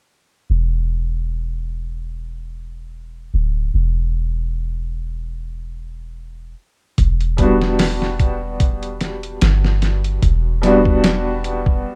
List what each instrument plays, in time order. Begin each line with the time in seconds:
0.50 808-style bass E1
3.34 808-style bass D1
3.74 808-style bass E1
6.98 808-style bass E1, kick, closed hi-hat
7.21 closed hi-hat
7.37 felt piano G3 B3 D4, kick, closed hi-hat
7.42 felt piano F#4
7.62 snare
7.79 snare, open hi-hat
8.02 snare
8.20 kick, closed hi-hat
8.60 kick, closed hi-hat
8.83 closed hi-hat
9.01 snare, closed hi-hat
9.23 closed hi-hat
9.41 808-style bass G1, snare, closed hi-hat
9.65 snare
9.82 snare, closed hi-hat
10.04 closed hi-hat
10.22 808-style bass E1, kick, closed hi-hat
10.62 felt piano G3 B3 D4, snare, closed hi-hat
10.66 felt piano F#4
10.85 kick
11.04 snare, closed hi-hat
11.44 closed hi-hat
11.66 kick